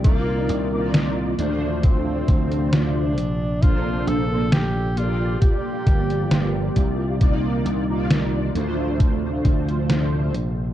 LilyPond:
<<
  \new Staff \with { instrumentName = "Analog polysynth" } { \time 4/4 \key d \phrygian \tempo 4 = 67 <bes ees' f' d''>8. <bes ees' f' d''>8. <a d' f' c''>2 r8 | <bes d' a' c''>8. <bes d' a' c''>16 r8 <bes f' g' d''>2~ <bes f' g' d''>8 | <bes ees' f' d''>8. <bes ees' f' d''>8. <a d' f' c''>2 r8 | }
  \new Staff \with { instrumentName = "Tenor saxophone" } { \time 4/4 \key d \phrygian bes4 r8 d'8 c'4 d'4 | f'8 a'8 g'8 f'8 g'4. r8 | r1 | }
  \new Staff \with { instrumentName = "Ambient pad" } { \time 4/4 \key d \phrygian << { <ees bes f' d''>4. f2 a'8~ | a'2 <bes g'>2 | <ees f' d''>4. f2 <d' a'>8 | } \\ { r4. c2~ c8~ | c2 f2 | r4. c2~ c8 | } >> }
  \new Staff \with { instrumentName = "Slap bass" } { \clef bass \time 4/4 \key d \phrygian c,8 c,4 d,4 d,4 bes,,8~ | bes,,8 bes,,4. r8 g,,8 g,,8 c,8~ | c,8 c,4 d,4 d,4 bes,,8 | }
  \new DrumStaff \with { instrumentName = "Drums" } \drummode { \time 4/4 <hh bd>8 hh8 <hh sn>8 hh8 <hh bd>8 <hh bd>16 hh16 <hh sn>8 hh8 | <hh bd>8 hh8 <hh sn>8 hh8 <hh bd>8 <hh bd>16 hh16 <hh sn>8 <hh bd>8 | <hh bd>8 hh8 <hh sn>8 hh8 <hh bd>8 <hh bd>16 hh16 <hh sn>8 hh8 | }
>>